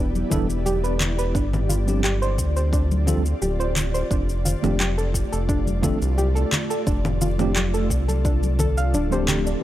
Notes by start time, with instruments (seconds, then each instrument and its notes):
Already playing: analog synth bass E1, ambient pad B3 E4 G4 D5
0.15 high conga, shaker
0.30 analog synth bass E1, tine electric piano E3 G3 B3 D4 A4, synth arpeggio sound E4, kick, low conga, shaker
0.50 shaker
0.66 synth arpeggio sound G4, high conga, shaker
0.84 synth arpeggio sound B4, shaker
1.00 clap, low conga, shaker
1.18 synth arpeggio sound B4, shaker
1.35 analog synth bass G1, ambient pad C4 F4, synth arpeggio sound D4, kick, shaker
1.53 low conga, shaker
1.69 synth arpeggio sound F4, low conga, shaker
1.86 tine electric piano F3 G3 C4 D4 G4, shaker
2.03 synth arpeggio sound G4, clap, high conga, shaker
2.22 synth arpeggio sound C5, shaker
2.38 analog synth bass D2, kick, shaker
2.56 synth arpeggio sound C5, shaker
2.73 synth arpeggio sound D4, kick, shaker
2.91 high conga, shaker
3.06 tine electric piano F3 G3 C4 D4 A4, synth arpeggio sound F4, kick, low conga, shaker
3.26 shaker
3.42 analog synth bass D1, synth arpeggio sound G4, high conga, shaker
3.60 synth arpeggio sound C5, shaker
3.76 clap, low conga, shaker
3.94 synth arpeggio sound C5, shaker
4.10 analog synth bass F1, ambient pad A3, synth arpeggio sound D4, kick, shaker
4.29 shaker
4.45 synth arpeggio sound F4, low conga, shaker
4.62 analog synth bass F1, tine electric piano F3 A3 C4 D4 G4, low conga, shaker
4.80 synth arpeggio sound G4, clap, high conga, shaker
4.98 synth arpeggio sound A4, shaker
5.14 kick, shaker
5.32 analog synth bass F1, synth arpeggio sound A4, shaker
5.49 synth arpeggio sound D4, kick, shaker
5.67 high conga, shaker
5.82 tine electric piano F3 A3 C4 D4 A4, synth arpeggio sound F4, kick, low conga, shaker
6.02 analog synth bass C2, shaker
6.18 synth arpeggio sound G4, high conga, shaker
6.35 synth arpeggio sound A4, shaker
6.52 clap, low conga, shaker
6.70 synth arpeggio sound A4, shaker
6.87 analog synth bass F1, synth arpeggio sound D4, ambient pad A4, kick, shaker
7.05 low conga, shaker
7.21 synth arpeggio sound F4, low conga, shaker
7.38 tine electric piano F3 A3 C4 D4 G4, low conga, shaker
7.55 synth arpeggio sound G4, clap, high conga, shaker
7.74 synth arpeggio sound A4, shaker
7.90 analog synth bass C2, kick, shaker
8.08 synth arpeggio sound A4, high conga, shaker
8.25 synth arpeggio sound D4, kick, shaker
8.43 high conga, shaker
8.59 synth arpeggio sound A4, kick, low conga, shaker
8.77 synth arpeggio sound F5, shaker
8.94 analog synth bass D1, synth arpeggio sound D4, high conga, shaker
9.11 tine electric piano F3 A3 C4 D4 G4, synth arpeggio sound C5, shaker
9.28 synth arpeggio sound G4, clap, low conga, shaker
9.46 synth arpeggio sound D4, shaker